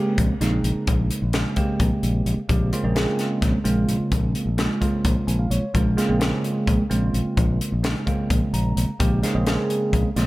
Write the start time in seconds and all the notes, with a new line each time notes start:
Already playing: C#3 G#3 A#3 C4 G4
0.18 A#1, kick, closed hi-hat
0.41 A#1 C#3 G#3 A#3 C4 D#4, snare, closed hi-hat
0.63 A#1, closed hi-hat
0.75 muted fingered electric bass stroke
0.87 A#1, kick, closed hi-hat
1.11 closed hi-hat
1.22 A#1
1.33 C#3 G#3 A#3 C4 F4, snare, closed hi-hat
1.56 C#3 G#3 A#3 C4 G4, kick, closed hi-hat
1.80 A#1, kick, closed hi-hat
2.03 A#1, closed hi-hat
2.26 A#1, closed hi-hat
2.49 A#1 C#3 G#3 A#3 C4 G4, kick, closed hi-hat
2.72 C#3 G#3 A#3 C4 F4, closed hi-hat
2.84 A#1 C#3 G#3 A#3 C4 G#4
2.95 C#3 G#3 A#3 C4 F4, snare, closed hi-hat
3.19 snare, closed hi-hat
3.42 A#1, kick, snare, closed hi-hat
3.64 A#1 C#3 G#3 A#3 C4 F4, closed hi-hat
3.88 A#1, closed hi-hat
4.00 muted fingered electric bass stroke
4.12 A#1, kick, closed hi-hat
4.35 closed hi-hat
4.46 A#1
4.58 C#3 G#3 A#3 C4 F4, snare, closed hi-hat
4.80 C#3 G#3 A#3 C4 F4, kick, closed hi-hat
5.05 A#1, kick, closed hi-hat
5.27 A#1 G#5, closed hi-hat
5.39 F5
5.50 A#1 C#5, closed hi-hat
5.62 muted fingered electric bass stroke
5.74 A#1 C#3 G#3 A#3 C4 F4, kick, closed hi-hat
5.97 C#3 G#3 A#3 C4 F4, snare, closed hi-hat
6.08 A#1 C#3 G#3 A#3 C4 G#4
6.20 C#3 G#3 A#3 C4 F4, snare, closed hi-hat
6.44 closed hi-hat
6.67 A#1, kick, closed hi-hat
6.90 A#1 C#3 G#3 A#3 C4 F4, closed hi-hat
7.14 A#1, closed hi-hat
7.25 muted fingered electric bass stroke
7.37 A#1, kick, closed hi-hat
7.61 closed hi-hat
7.72 A#1
7.83 C#3 G#3 A#3 C4 D#4, snare, closed hi-hat
8.06 C#3 G#3 A#3 C4 F4, kick, closed hi-hat
8.30 A#1, kick, closed hi-hat
8.53 A#1 A#5, closed hi-hat
8.77 A#1, closed hi-hat
8.99 A#1 C#3 G#3 A#3 C4 G4, kick, closed hi-hat
9.23 C#3 G#3 A#3 C4 D#4, snare, closed hi-hat
9.34 A#1 C#3 G#3 A#3 C4 G#4
9.46 C#3 G#3 A#3 C4 G#4, snare, closed hi-hat
9.70 closed hi-hat
9.93 A#1, kick, closed hi-hat
10.16 A#1 C#3 G#3 A#3 C4 F4, snare, closed hi-hat